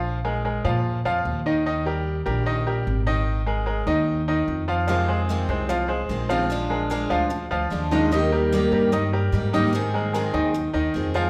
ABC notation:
X:1
M:4/4
L:1/8
Q:1/4=148
K:Eb
V:1 name="Grand piano"
[F,Ff] [A,AB] [A,AB] [F,Ff]2 [F,Ff]2 [E,Ee] | [E,Ee] [G,GB]2 [G,GB] [E,Ee] [G,GB]2 [E,Ee]- | [E,Ee] [A,AB] [A,AB] [E,Ee]2 [E,Ee]2 [F,Ff] | [F,Ff] [A,Ac]2 [A,Ac] [F,Ff] [A,Ac]2 [F,Ff]- |
[F,Ff] [A,AB] [A,AB] [F,Ff]2 [F,Ff]2 [E,Ee] | [E,Ee] [G,GB]2 [G,GB] [E,Ee] [G,GB]2 [E,Ee]- | [E,Ee] [A,AB] [A,AB] [E,Ee]2 [E,Ee]2 [F,Ff] |]
V:2 name="Steel-string acoustic guitar"
z8 | z8 | z8 | [C,E,A,CF]2 [C,E,A,CF]2 z2 [E,A,CF] [E,A,CF] |
[F,A,DF]2 [F,A,DF]2 z2 [F,A,DF] [A,DF] | [E,G,B,EG]2 [E,G,B,EG]2 z2 [G,B,EG] [G,B,EG] | [E,A,CA]2 [E,A,CA]2 z2 [E,A,CA] [A,CA] |]
V:3 name="Upright bass" clef=bass
B,,,3 B,,2 F,, E,,2- | E,,3 B,,,3 A,,,2- | A,,,3 E,,3 F,,2- | F,,3 C,,3 B,,,2- |
B,,,3 D,,2 D,, E,,2- | E,,3 G,,3 A,,2- | A,,3 E,,2 E,, F,,2 |]